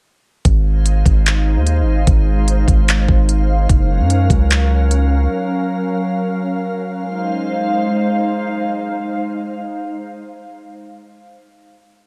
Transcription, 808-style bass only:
0.45 G#1
1.06 G#1
1.57 D#2
1.82 G#1
2.07 G#1
2.68 G#1
3.08 G#1
3.69 F#1
4.00 F#2
4.30 C#2

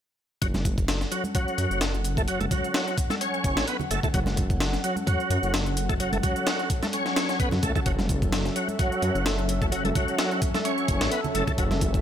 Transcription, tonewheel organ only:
0.42 F#3
1.12 F#3
1.35 F#3
2.18 A3
2.28 F#3
2.41 A3
2.51 F#3
3.10 A3
3.21 C#4
3.68 B3
3.91 A3
4.04 A3
4.14 F#3
4.84 F#3
5.07 F#3
5.89 A3
6.00 F#3
6.13 A3
6.23 F#3
6.83 A3
6.93 C#4
7.40 B3
7.63 A3
7.75 A3
7.86 F#3
8.56 F#3
8.79 F#3
9.62 A3
9.72 F#3
9.85 A3
9.96 F#3
10.55 A3
10.65 C#4
11.11 B3
11.35 A3
11.47 A3
11.58 F#3

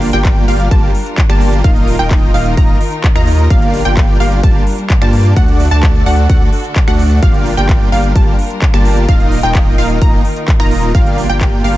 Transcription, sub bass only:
Already playing: G1
0.13 G1
0.48 G1
0.71 G1
1.30 G1
1.64 D#1
1.99 D#1
2.34 D#1
2.57 D#1
3.16 D#2
3.50 G1
3.85 G1
4.20 G1
4.43 G1
5.02 G2
5.36 D2
5.71 D2
6.06 D2
6.30 D2
6.88 D2
7.23 G1
7.57 G1
7.92 G1
8.16 G1
8.74 G1
9.09 D#1
9.43 D#1
9.78 D#1
10.02 D#1
10.60 D#1
10.95 G1
11.29 G1
11.64 G1

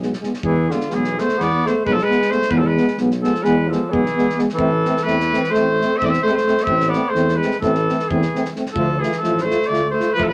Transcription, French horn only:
0.02 B3
0.25 B3
0.46 B3
0.71 B3
0.94 B3
1.20 B3
1.40 B3
1.65 B3
1.86 B3
2.09 B3
2.29 B3
2.50 B3
2.77 B3
2.99 B3
3.22 B3
3.44 B3
3.71 B3
3.91 B3
4.16 B3
4.36 B3
4.57 C4
4.86 C4
5.07 C4
5.34 C4
5.58 C4
5.83 C4
6.04 C4
6.27 C4
6.46 C4
6.67 C4
6.94 C4
7.15 C4
7.43 C4
7.63 C4
7.88 C4
8.11 C4
8.34 C4
8.56 C4
8.76 F4
9.03 F4
9.24 F4
9.50 F4
9.72 F4
9.99 F4
10.21 F4

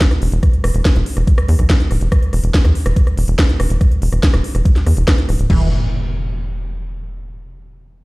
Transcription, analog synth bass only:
0.22 E1
0.32 E1
0.64 E1
0.75 E1
0.96 E1
1.17 E1
1.49 E2
1.59 B1
1.91 D1
2.01 E1
2.33 E1
2.44 E1
2.65 E2
2.86 E1
3.18 E1
3.28 E1
3.60 E1
3.70 E1
4.02 E1
4.13 E1
4.34 E1
4.55 E1
4.87 E2
4.97 E1
5.29 D1
5.39 D1
5.50 E1

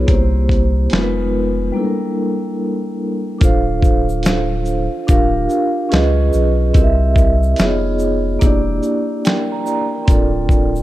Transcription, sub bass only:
0.09 C2
0.92 F1
3.42 D1
5.09 D1
5.93 C#2
6.34 B1
6.75 C2
7.59 F1
8.42 E1
10.08 D1

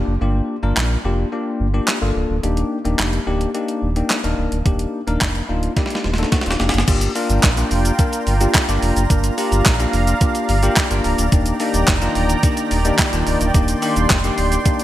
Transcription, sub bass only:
0.07 F#1
0.21 G1
0.63 G1
0.77 A#1
1.04 F1
1.60 G1
2.02 G1
2.16 C#1
2.30 D1
2.43 D#1
2.85 D#1
2.99 F1
3.27 D1
3.82 D#1
4.24 D#1
4.38 C#1
4.52 D1
4.66 D#1
5.07 D#1
5.21 F1
5.49 D1
6.05 D#1
6.46 D#1
6.60 F1
6.74 F#1
6.88 G1
7.30 G1
7.44 A#1
7.71 F1
8.27 G1
8.68 G1
8.82 F1
8.96 F#1
9.10 G1
9.52 G1
9.66 A#1
9.93 F1
10.49 G1
10.91 G1
11.05 C#1
11.18 D1
11.32 D#1
11.74 D#1
11.88 F1
12.16 D1
12.71 D#1
13.13 D#1
13.27 C#1
13.40 D1
13.55 D#1
13.96 D#1
14.10 F1
14.38 D1

